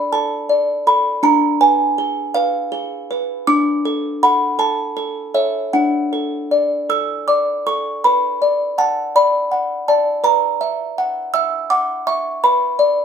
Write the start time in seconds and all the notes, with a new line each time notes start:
Already playing: D4 D5 B5
0.13 A4 A5
0.49 D5
0.87 A4 B5
1.23 D4 A#5
1.61 B4 G#5
1.98 G#4
2.34 B4 F5
2.72 G#4
3.11 B4
3.47 D4 D6
3.85 A4
4.23 A4 F#5 B5
4.59 A4 A5
4.97 A4
5.34 A4 C#5 E5
5.73 D4 F#5
6.13 A4
6.51 D5
6.89 A4 E6
7.28 D5 D6
7.67 A4 C#6
8.04 B4 B5
8.42 D5
8.78 F#5 A5
9.16 D5 B5
9.52 F#5
9.88 D5 A5
10.24 B4 A#5
10.61 E5
10.98 F#5
11.34 E5 E6
11.70 F#5 D6
12.07 E5 C#6
12.44 B4 B5
12.79 D5